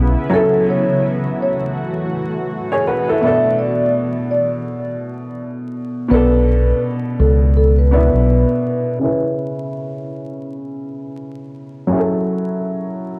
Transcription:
Already playing: fingered electric bass B1, upright piano C#3 C#4 E4 B4, ambient pad C#3 B3 E4
0.30 ambient pad E3 A3 F#4, upright piano F#3 C#4 E4, vibraphone A4
0.35 upright piano A4
0.70 vibraphone C#5
1.42 vibraphone C#5
2.72 upright piano G#4 C#5
2.87 upright piano F#4 B4
3.09 upright piano E4 A4
3.21 upright piano B2 B3 D4, vibraphone E5
3.27 upright piano A4
3.58 vibraphone D5
4.31 vibraphone D5
6.09 fingered electric bass B1, upright piano B2 B3 D4, vibraphone B4
6.14 upright piano A4
6.48 vibraphone B4
7.20 fingered electric bass C#2, vibraphone A4
7.57 vibraphone A4
7.78 vibraphone B4
7.91 upright piano B2 B3 D4 E4, vibraphone B4
8.13 fingered electric bass B1
8.99 upright piano C#3 C#4 E4
9.04 upright piano B4
11.87 upright piano F#3 C#4 E4
11.92 upright piano G#4
11.99 upright piano A4

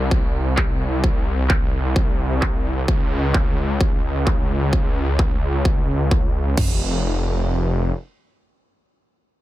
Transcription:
Already playing: detuned saw bass C2
0.11 kick
0.57 kick, clap
1.04 kick
1.50 kick, clap
1.96 kick
2.42 kick, clap
2.88 detuned saw bass C#2, kick
3.34 kick, clap
3.81 kick
4.26 kick, clap
4.73 kick
5.19 kick, clap
5.65 kick
6.11 kick, clap
6.57 detuned saw bass F1, kick, floor tom, crash

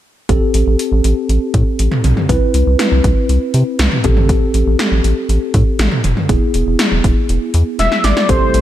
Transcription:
0.29 analog synth bass A1, tine electric piano C4 G4 A4, kick, closed hi-hat
0.54 analog synth bass A1, closed hi-hat
0.67 analog synth bass A1
0.79 closed hi-hat
0.92 analog synth bass A1
1.04 analog synth bass A1, closed hi-hat
1.29 analog synth bass A1, closed hi-hat
1.54 analog synth bass A2, kick, closed hi-hat
1.79 analog synth bass A1, closed hi-hat
1.92 mid tom
2.04 analog synth bass B1, closed hi-hat, mid tom
2.17 mid tom
2.29 analog synth bass C2, tine electric piano C4 E4 B4, kick, closed hi-hat
2.54 analog synth bass C2, closed hi-hat
2.67 analog synth bass C2
2.79 snare, closed hi-hat
2.92 analog synth bass C2
3.04 analog synth bass C2, kick, closed hi-hat
3.29 analog synth bass C2, closed hi-hat
3.54 analog synth bass C3, closed hi-hat
3.79 analog synth bass C2, snare, closed hi-hat
3.92 mid tom
4.04 analog synth bass A1, tine electric piano C4 G4 A4, kick, closed hi-hat, mid tom
4.17 mid tom
4.29 kick, closed hi-hat
4.54 analog synth bass A1, closed hi-hat
4.67 analog synth bass A1
4.79 snare, closed hi-hat
4.92 analog synth bass A1
5.04 analog synth bass A1, closed hi-hat
5.29 analog synth bass A1, closed hi-hat
5.54 analog synth bass A2, kick, closed hi-hat
5.79 analog synth bass A1, snare, closed hi-hat
5.92 mid tom
6.04 analog synth bass F1, closed hi-hat, mid tom
6.17 mid tom
6.29 analog synth bass E1, tine electric piano B3 E4 G#4, kick, closed hi-hat
6.54 analog synth bass E1, closed hi-hat
6.67 analog synth bass E1
6.79 snare, closed hi-hat
6.92 analog synth bass E1
7.04 analog synth bass E1, kick, closed hi-hat
7.29 analog synth bass E1, closed hi-hat
7.54 analog synth bass E2, closed hi-hat
7.79 analog synth bass E1, analog synth lead E5, snare, closed hi-hat
7.92 snare
8.04 analog synth bass G#1, analog synth lead D5, snare, closed hi-hat
8.17 snare
8.29 analog synth bass A1, analog synth pad C3 G3 A3 E4 G4, tine electric piano C4 G4 A4, analog synth lead C5, kick, closed hi-hat
8.54 analog synth bass A1, closed hi-hat

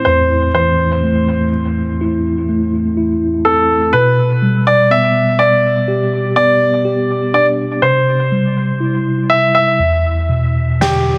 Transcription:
Already playing: tine electric piano A3 C4 E4
0.05 tine electric piano E2, grand piano C5
0.55 tine electric piano E3, grand piano C5
1.03 tine electric piano A3
2.01 tine electric piano E4
2.49 tine electric piano A3
2.97 tine electric piano E4
3.45 tine electric piano C4, grand piano A4
3.93 tine electric piano B2, grand piano B4
4.42 tine electric piano G3
4.67 grand piano D5
4.91 tine electric piano B3, grand piano E5
5.39 grand piano D5
5.88 tine electric piano G4
6.36 tine electric piano B3, grand piano D5
6.85 tine electric piano G4
7.34 tine electric piano D4, grand piano D5
7.82 tine electric piano C3, grand piano C5
8.32 tine electric piano G3
8.80 tine electric piano E4
9.30 grand piano E5
9.55 grand piano E5
9.79 tine electric piano E2
10.29 tine electric piano B2
10.80 tine electric piano D3, grand piano G4 G5, snare

